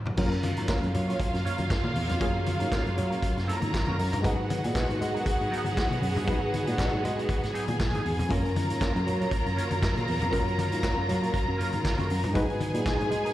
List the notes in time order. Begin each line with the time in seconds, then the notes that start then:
0.06 muted clean electric guitar stroke, floor tom, low conga
0.17 F#2 F#3 A#3 C#4 F4 G#4 A#4 F5, kick, crash
0.26 A#4
0.32 muted clean electric guitar stroke, closed hi-hat
0.43 muted clean electric guitar stroke, closed hi-hat, muted conga, high conga
0.57 G#2 A#3 C#4 F4 A#4, closed hi-hat
0.68 A#3 C#4 F4 A#4, kick, snare, clap, muted conga
0.83 F#2, muted clean electric guitar stroke, closed hi-hat
0.94 F#3, muted clean electric guitar stroke, closed hi-hat, low conga
1.08 A#3 C#4 F4 C#5, closed hi-hat
1.20 kick, closed hi-hat
1.34 F#2, muted clean electric guitar stroke, snare, closed hi-hat
1.45 A#3 C#4 F4 C#5, closed hi-hat, muted conga
1.58 F#2, muted clean electric guitar stroke, closed hi-hat, high conga
1.70 muted clean electric guitar stroke, kick, snare, clap
1.84 A#2, muted clean electric guitar stroke, high conga
1.95 E2, open hi-hat, muted conga
2.09 F2, muted clean electric guitar stroke, closed hi-hat, low conga
2.19 F#2 F#3 A#3 C#4 F4 G#4 A#4, kick, closed hi-hat
2.34 muted clean electric guitar stroke
2.45 muted clean electric guitar stroke, closed hi-hat, muted conga, high conga
2.60 G#2 A#3 C#4 F4 A#4, closed hi-hat
2.70 A#3 C#4 F4 A#4, kick, snare, clap
2.85 F#2, muted clean electric guitar stroke, closed hi-hat
2.96 F#3, muted clean electric guitar stroke, closed hi-hat, low conga
3.10 A#3 C#4 F4 A#4, closed hi-hat
3.23 kick, closed hi-hat, muted conga
3.37 F#2, muted clean electric guitar stroke, snare, closed hi-hat
3.47 A#3 C#4 F4 A#4 A#5, closed hi-hat
3.62 G#2, muted clean electric guitar stroke, closed hi-hat, high conga
3.73 muted clean electric guitar stroke, kick, snare, clap, muted conga
3.87 F#2 A#3 C#4 F4 A#4, high conga
3.99 F#2, open hi-hat
4.12 G2, muted clean electric guitar stroke, closed hi-hat, low conga
4.22 G#2 F#3 G#3 B3 D#4 F#4 G#4 B4 F#5, kick, closed hi-hat
4.39 muted clean electric guitar stroke
4.50 muted clean electric guitar stroke, closed hi-hat, muted conga, high conga
4.64 A#2 F#3 B3 D#4 G#4, closed hi-hat
4.75 F#3 B3 D#4 G#4, kick, snare, clap
4.89 G#2, muted clean electric guitar stroke, closed hi-hat
5.00 G#3, muted clean electric guitar stroke, closed hi-hat, low conga
5.14 F#3 B3 D#4 A#4, closed hi-hat
5.26 kick, closed hi-hat, muted conga
5.40 G#2, muted clean electric guitar stroke, closed hi-hat
5.50 F#3 B3 D#4 A#4, closed hi-hat, muted conga
5.64 G#2, muted clean electric guitar stroke, closed hi-hat, high conga
5.76 muted clean electric guitar stroke, kick, snare, clap
5.90 B2, muted clean electric guitar stroke, closed hi-hat, high conga
6.02 F#2, open hi-hat
6.16 G2, muted clean electric guitar stroke, closed hi-hat, low conga
6.25 G#2 F#3 G#3 B3 D#4 F#4 G#4 B4, kick, closed hi-hat
6.41 muted clean electric guitar stroke
6.52 muted clean electric guitar stroke, closed hi-hat, muted conga, high conga
6.65 A#2 F#3 B3 D#4 G#4, closed hi-hat
6.77 F#3 B3 D#4 G#4, kick, snare, clap, muted conga
6.91 G#2, muted clean electric guitar stroke
7.02 G#3, muted clean electric guitar stroke, closed hi-hat, low conga
7.16 F#3 B3 D#4 G#4, closed hi-hat
7.29 kick, closed hi-hat, muted conga
7.43 G#2, muted clean electric guitar stroke, snare, closed hi-hat
7.53 F#3 B3 D#4 G#4 G#5, closed hi-hat
7.68 A#2, muted clean electric guitar stroke, closed hi-hat, high conga
7.79 muted clean electric guitar stroke, kick, snare, clap
7.93 G#2 F#3 B3 D#4 G#4, closed hi-hat, high conga
8.04 E2, muted clean electric guitar stroke, open hi-hat
8.18 F2, muted clean electric guitar stroke, closed hi-hat, low conga
8.29 F#2 F#3 A#3 C#4 F4 A#4 A#5, kick, closed hi-hat
8.44 muted clean electric guitar stroke, closed hi-hat
8.56 muted clean electric guitar stroke, closed hi-hat, muted conga, high conga
8.69 G#2 A#3 C#4 F4 A#4, closed hi-hat
8.80 A#3 C#4 F4 A#4, kick, snare, clap, muted conga
8.95 F#2, muted clean electric guitar stroke, closed hi-hat
9.06 F#3, muted clean electric guitar stroke, closed hi-hat, muted conga, low conga
9.20 A#3 C#4 F4 C#5, closed hi-hat
9.31 kick, closed hi-hat
9.46 F#2, muted clean electric guitar stroke, closed hi-hat
9.56 A#3 C#4 F4 C#5, closed hi-hat, muted conga
9.71 F#2, muted clean electric guitar stroke, closed hi-hat, high conga
9.82 muted clean electric guitar stroke, kick, snare, clap
9.95 A#2, muted clean electric guitar stroke, closed hi-hat, high conga
10.08 E2, open hi-hat, muted conga
10.20 F2, muted clean electric guitar stroke, closed hi-hat, low conga
10.31 F#2 F#3 A#3 C#4 F4 A#4, kick, closed hi-hat
10.46 muted clean electric guitar stroke, closed hi-hat
10.57 muted clean electric guitar stroke, closed hi-hat, muted conga, high conga
10.71 G#2 A#3 C#4 F4 A#4, closed hi-hat
10.82 A#3 C#4 F4 A#4, kick, snare, clap
10.97 F#2, muted clean electric guitar stroke
11.08 F#3, muted clean electric guitar stroke, closed hi-hat, low conga
11.22 A#3 C#4 F4 A#4, closed hi-hat
11.34 kick, closed hi-hat
11.47 F#2, muted clean electric guitar stroke
11.57 A#3 C#4 F4 A#4, closed hi-hat, muted conga
11.72 G#2, muted clean electric guitar stroke, closed hi-hat, high conga
11.83 muted clean electric guitar stroke, kick, snare, clap, muted conga
11.97 F#2 A#3 C#4 F4 A#4, closed hi-hat, high conga
12.09 F#2, muted clean electric guitar stroke, open hi-hat, muted conga
12.23 G2, muted clean electric guitar stroke, closed hi-hat, low conga
12.33 G#2 F#3 G#3 B3 D#4 F#4 G#4 B4 G#5, kick, closed hi-hat, muted conga
12.49 muted clean electric guitar stroke, closed hi-hat
12.59 muted clean electric guitar stroke, closed hi-hat, muted conga, high conga
12.74 A#2 F#3 B3 D#4 G#4, closed hi-hat
12.86 F#3 B3 D#4 G#4, kick, snare, clap, muted conga
12.99 G#2, muted clean electric guitar stroke, closed hi-hat
13.11 G#3, muted clean electric guitar stroke, closed hi-hat, low conga
13.25 F#3 B3 D#4 A#4, closed hi-hat